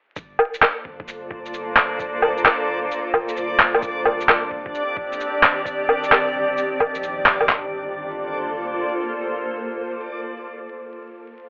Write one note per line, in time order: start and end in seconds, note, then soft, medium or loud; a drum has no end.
0.16 0.38 G1 medium
0.16 3.79 A#3 medium
0.16 7.50 D4 medium
0.16 3.79 F4 medium
0.16 3.79 A4 medium
0.16 3.79 C5 medium
0.16 7.50 D5 medium
0.16 kick loud
0.16 shaker medium
0.39 low woodblock medium
0.54 shaker medium
0.62 clap loud
0.62 low woodblock medium
0.85 1.06 G1 loud
0.85 kick medium
1.00 kick loud
1.08 2.44 G1 medium
1.08 shaker medium
1.31 kick loud
1.46 shaker medium
1.54 shaker medium
1.76 clap medium
1.99 kick loud
1.99 shaker medium
2.22 low woodblock medium
2.37 shaker medium
2.45 clap loud
2.45 low woodblock medium
2.68 2.89 G1 medium
2.91 shaker medium
3.14 kick loud
3.14 low woodblock medium
3.29 shaker medium
3.36 3.58 G1 medium
3.36 shaker medium
3.59 4.50 G1 medium
3.59 clap loud
3.75 low woodblock medium
3.82 7.45 D#3 medium
3.82 7.45 C4 medium
3.82 7.45 G4 medium
3.82 7.45 D5 medium
3.82 kick loud
3.82 shaker medium
4.05 low woodblock medium
4.21 shaker medium
4.29 clap loud
4.29 low woodblock medium
4.51 4.73 G1 loud
4.51 kick medium
4.66 kick loud
4.75 shaker medium
4.97 kick loud
5.12 shaker medium
5.20 shaker medium
5.43 clap loud
5.66 kick loud
5.66 shaker medium
5.89 low woodblock medium
6.04 shaker medium
6.12 clap loud
6.12 low woodblock medium
6.34 6.56 G1 loud
6.58 shaker medium
6.80 kick loud
6.80 low woodblock medium
6.94 7.25 A#1 medium
6.94 shaker medium
7.03 shaker medium
7.25 7.47 A#1 medium
7.25 clap loud
7.41 low woodblock medium
7.48 8.82 G1 loud
7.48 10.68 A#3 medium
7.48 10.68 F4 medium
7.48 10.68 A4 medium
7.48 10.68 C5 medium
7.48 kick loud
7.48 clap medium
7.48 floor tom loud